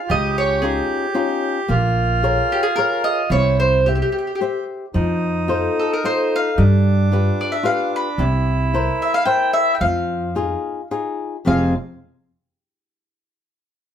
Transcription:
Already playing: accordion F4
0.08 upright bass C#2, nylon-string guitar C#3, accordion G4, mandolin D#5
0.38 mandolin C#5
0.62 nylon-string guitar C#4 D#4 F4, mandolin G#4
1.14 nylon-string guitar C#4 D#4 F4
1.68 upright bass A#1, nylon-string guitar A#3, accordion F4
2.23 nylon-string guitar G#4 A#4 C#5
2.52 mandolin G4
2.63 mandolin G#4
2.76 nylon-string guitar G#4 A#4 C#5, mandolin A#4
3.04 mandolin D#5
3.30 upright bass C2, nylon-string guitar C4, accordion E4, mandolin C#5
3.60 mandolin C5
3.84 accordion G4, mandolin G4, nylon-string guitar G4 C5 E5
3.95 mandolin G4
4.02 mandolin G4
4.12 mandolin G4
4.18 mandolin G4
4.27 mandolin G4
4.35 mandolin G4
4.41 nylon-string guitar G4 C5 E5
4.94 upright bass F2, nylon-string guitar F3, accordion D#4
5.48 nylon-string guitar F4 A4 C5
5.79 mandolin A4
5.93 mandolin A#4
6.04 nylon-string guitar F4 A4 C5, mandolin C5
6.36 mandolin F5
6.58 upright bass G2, nylon-string guitar G3, accordion D4
7.12 nylon-string guitar F4 G4 B4
7.41 mandolin D5
7.52 mandolin E5
7.63 nylon-string guitar F4 G4 B4, mandolin F5
7.96 mandolin B5
8.18 upright bass C2, nylon-string guitar C3, accordion E4
8.74 nylon-string guitar E4 A#4 C5
9.02 mandolin E5
9.14 mandolin F5
9.25 nylon-string guitar E4 A#4 C5, mandolin G5
9.53 mandolin E5
9.75 mandolin G5
9.81 upright bass F2, nylon-string guitar F3, mandolin F5
10.35 nylon-string guitar D#4 F4 G#4
10.91 nylon-string guitar D#4 F4 G#4
11.45 upright bass F1, nylon-string guitar F2 C3 F3 C4 G#4 D#5, accordion G#4, mandolin F5

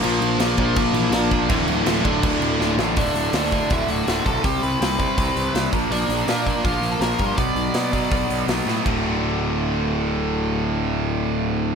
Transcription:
Already playing: distorted electric guitar A#2 F3 A#3
0.03 picked electric bass A#1, distorted electric guitar A#2 F3 A#3, lead electric guitar F3 F4, crash
0.21 picked electric bass A#1, crash
0.39 picked electric bass A#1, distorted electric guitar A#2 F3 A#3, snare, crash
0.57 picked electric bass A#1, distorted electric guitar A#2 F3 A#3, lead electric guitar F3 F4, kick, crash
0.76 picked electric bass A#1, distorted electric guitar A#2 F3 A#3, kick, crash
0.93 picked electric bass A#1, lead electric guitar E3 E4, crash
1.11 picked electric bass A#1, distorted electric guitar A#2 F3 A#3, lead electric guitar D4 D5, snare, crash
1.31 distorted electric guitar A#2 F3 A#3, kick, crash
1.49 picked electric bass D1, distorted electric guitar D2 A2 D3, lead electric guitar E3 E4, kick, crash
1.67 picked electric bass D1, crash
1.85 picked electric bass D1, distorted electric guitar D2 A2 D3, snare, crash
2.05 picked electric bass D1, distorted electric guitar D2 A2 D3, lead electric guitar D4 D5, kick, crash
2.23 picked electric bass D1, distorted electric guitar D2 A2 D3, kick, crash
2.41 picked electric bass D1, crash
2.59 picked electric bass D1, distorted electric guitar D2 A2 D3, snare
2.77 picked electric bass A1, distorted electric guitar D2 A2 D3, snare
2.96 picked electric bass D1, distorted electric guitar D2 A2 D3, lead electric guitar D4 D5, kick, open hi-hat
3.14 picked electric bass D1, open hi-hat
3.33 picked electric bass D2, distorted electric guitar D2 A2 D3, lead electric guitar D4 D5, snare, open hi-hat
3.52 distorted electric guitar D2 A2 D3, kick, open hi-hat
3.70 picked electric bass D1, distorted electric guitar D2 A2 D3, lead electric guitar E4 E5, kick, open hi-hat
3.88 picked electric bass D1, lead electric guitar F#4 F#5, open hi-hat
4.07 picked electric bass D1, distorted electric guitar D2 A2 D3, snare, open hi-hat
4.25 picked electric bass B1, distorted electric guitar D2 A2 D3, lead electric guitar A4 A5, kick, open hi-hat
4.44 picked electric bass C2, distorted electric guitar C3 G3 C4, lead electric guitar G4 G5, kick, open hi-hat
4.63 picked electric bass C2, lead electric guitar B4 B5, open hi-hat
4.80 picked electric bass C2, distorted electric guitar C3 G3 C4, snare, open hi-hat
4.98 distorted electric guitar C3 G3 C4, kick, open hi-hat
5.16 picked electric bass C2, distorted electric guitar C3 G3 C4, kick, open hi-hat
5.36 picked electric bass C2, open hi-hat
5.53 picked electric bass C2, distorted electric guitar C3 G3 C4, snare, open hi-hat
5.71 picked electric bass A#1, distorted electric guitar A#2 F3 A#3, kick, open hi-hat
5.90 picked electric bass A#1, distorted electric guitar A#2 F3 A#3, lead electric guitar D4 D5, open hi-hat
6.09 picked electric bass A#1, open hi-hat
6.26 picked electric bass A#2, distorted electric guitar A#2 F3 A#3, lead electric guitar D4 D5, snare, open hi-hat
6.47 distorted electric guitar A#2 F3 A#3, kick, open hi-hat
6.64 picked electric bass A#1, distorted electric guitar A#2 F3 A#3, lead electric guitar F4 F5, kick, open hi-hat
6.81 picked electric bass A#1, open hi-hat
6.92 lead electric guitar A4 A5
7.00 picked electric bass A#1, distorted electric guitar A#2 F3 A#3, lead electric guitar A#4 A#5, snare, open hi-hat
7.19 picked electric bass G2, distorted electric guitar A#2 F3 A#3, kick, open hi-hat
7.26 lead electric guitar C5 C6
7.37 picked electric bass B1, distorted electric guitar B2 F#3 B3, lead electric guitar D5 D6, kick, open hi-hat
7.55 picked electric bass B1, open hi-hat
7.74 picked electric bass B2, distorted electric guitar B2 F#3 B3, snare, open hi-hat
7.93 distorted electric guitar B2 F#3 B3, kick, open hi-hat
8.11 picked electric bass B1, distorted electric guitar B2 F#3 B3, kick, open hi-hat
8.29 picked electric bass B1, open hi-hat
8.48 picked electric bass B1, distorted electric guitar B2 F#3 B3, snare, open hi-hat
8.66 picked electric bass A2, distorted electric guitar B2 F#3 B3, snare
8.85 picked electric bass D1, distorted electric guitar D2 A2 D3 A3 F#4, kick, crash

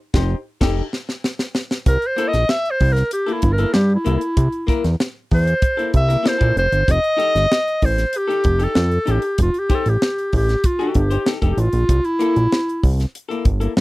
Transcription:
0.14 analog synth bass F1, hollow-body jazz guitar D#4 G4 C5, kick, snare
0.61 analog synth bass F1, hollow-body jazz guitar D#4 G4 A4, kick, snare, crash
0.93 snare
1.09 snare
1.24 snare
1.39 snare
1.55 snare
1.71 snare
1.86 analog synth bass C2, clarinet A#4, kick, closed hi-hat
2.02 closed hi-hat
2.07 clarinet C5
2.16 hollow-body jazz guitar A#3 E4 A4, closed hi-hat
2.28 clarinet D#5
2.33 analog synth bass A#1, snare, closed hi-hat
2.49 clarinet E5, snare
2.65 closed hi-hat
2.71 clarinet C5
2.80 analog synth bass C2, kick, open hi-hat
2.93 clarinet A#4, snare, closed hi-hat
3.11 clarinet G4, closed hi-hat
3.26 hollow-body jazz guitar A#3 E4 A4, closed hi-hat
3.33 clarinet E4
3.42 analog synth bass G1, kick, closed hi-hat
3.53 clarinet A#4
3.58 hollow-body jazz guitar A#3 E4 A4, closed hi-hat
3.73 analog synth bass G2, clarinet G4, snare
3.95 clarinet E4
4.05 analog synth bass C2, hollow-body jazz guitar A#3 E4 A4, closed hi-hat
4.17 clarinet E4
4.21 closed hi-hat
4.37 analog synth bass C2, kick, closed hi-hat
4.52 closed hi-hat
4.67 hollow-body jazz guitar A#3 E4 A#4, kick, closed hi-hat
4.84 analog synth bass E2, snare, closed hi-hat
5.00 snare
5.31 analog synth bass E2, clarinet C5, kick, open hi-hat
5.47 closed hi-hat
5.62 kick, closed hi-hat
5.77 hollow-body jazz guitar A#3 E4 A4, closed hi-hat
5.94 analog synth bass C2, clarinet E5, kick, closed hi-hat
6.08 hollow-body jazz guitar A#3 E4 A#4, closed hi-hat
6.23 hollow-body jazz guitar A#3 E4 A4, snare
6.28 clarinet C5
6.38 analog synth bass A#1, hollow-body jazz guitar A#3 E4 A4, kick, closed hi-hat
6.56 analog synth bass F1, clarinet C5, closed hi-hat
6.72 analog synth bass G1, closed hi-hat
6.88 analog synth bass F1, clarinet D#5, kick, closed hi-hat
7.04 closed hi-hat
7.17 hollow-body jazz guitar D#4 G4 A4, closed hi-hat
7.35 analog synth bass G1, snare, closed hi-hat
7.52 snare
7.68 closed hi-hat
7.82 analog synth bass A1, clarinet C5, kick, open hi-hat
7.98 snare, closed hi-hat
8.13 closed hi-hat
8.17 clarinet G4
8.27 hollow-body jazz guitar D#4 G4 A4, closed hi-hat
8.44 analog synth bass F1, kick, closed hi-hat
8.59 hollow-body jazz guitar D#4 G4 A4, closed hi-hat
8.64 clarinet A4
8.75 analog synth bass F2, snare
8.91 closed hi-hat
9.06 analog synth bass A1, hollow-body jazz guitar D#4 G4 A4, closed hi-hat
9.11 clarinet G4
9.22 closed hi-hat
9.38 analog synth bass F1, clarinet F4, kick, closed hi-hat
9.54 closed hi-hat
9.59 clarinet G4
9.69 hollow-body jazz guitar D#4 G4 C5, kick, closed hi-hat
9.75 clarinet A4
9.86 analog synth bass A1, clarinet G4, closed hi-hat
10.02 snare
10.18 closed hi-hat
10.33 analog synth bass A1, clarinet G4, kick, open hi-hat
10.49 snare, closed hi-hat
10.64 clarinet F4, kick, closed hi-hat
10.79 hollow-body jazz guitar D#4 G4 A4, closed hi-hat
10.89 clarinet F#4
10.95 analog synth bass G1, clarinet G4, kick, closed hi-hat
11.10 hollow-body jazz guitar D#4 G4 C5, closed hi-hat
11.26 hollow-body jazz guitar D#4 G4 A4, snare
11.42 analog synth bass F1, hollow-body jazz guitar D#4 G4 A4, kick, closed hi-hat
11.51 clarinet G4
11.57 analog synth bass A1, clarinet F4, closed hi-hat
11.73 analog synth bass A#1, closed hi-hat
11.89 analog synth bass C2, kick, closed hi-hat
12.05 clarinet E4, closed hi-hat
12.19 hollow-body jazz guitar A#3 E4 A4, closed hi-hat
12.36 analog synth bass A#1, closed hi-hat
12.52 snare
12.69 closed hi-hat
12.83 analog synth bass C2, kick, open hi-hat
13.00 snare, closed hi-hat
13.15 closed hi-hat
13.29 hollow-body jazz guitar A#3 E4 A4, closed hi-hat
13.45 analog synth bass G1, kick, closed hi-hat
13.60 hollow-body jazz guitar A#3 E4 A4, closed hi-hat
13.77 analog synth bass G2, snare

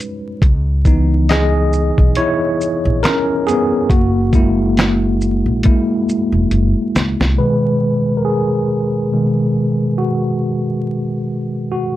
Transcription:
0.00 closed hi-hat, shaker
0.42 upright bass C#2, kick, closed hi-hat
0.85 tine electric piano E3 B3 D#4, kick, closed hi-hat, shaker
1.29 tine electric piano G#4 D#5, snare, clap, closed hi-hat
1.73 shaker
1.98 upright bass B1, kick
2.15 tine electric piano E4 C#5, closed hi-hat
2.61 shaker
2.85 upright bass A#1
3.03 tine electric piano C#4 A#4, snare, clap, closed hi-hat
3.47 tine electric piano B3 G#4, closed hi-hat, shaker
3.90 upright bass F#1, tine electric piano A#3 F#4, kick, closed hi-hat
4.33 tine electric piano G#3 A#3 E4, kick, closed hi-hat, shaker
4.77 snare, clap, closed hi-hat
5.21 shaker
5.46 upright bass A#1
5.63 tine electric piano G#3 A#3 E4, kick, closed hi-hat
6.09 shaker
6.32 upright bass E1
6.51 upright bass F#1, closed hi-hat
6.95 upright bass C#2, snare, closed hi-hat, shaker
7.20 upright bass C2, snare
7.38 tine electric piano B2 D#3 G#3 B4
8.17 tine electric piano A#4
8.25 tine electric piano G#4
9.12 tine electric piano B2 D#3 G#3
9.98 tine electric piano F#4
11.72 tine electric piano F#4

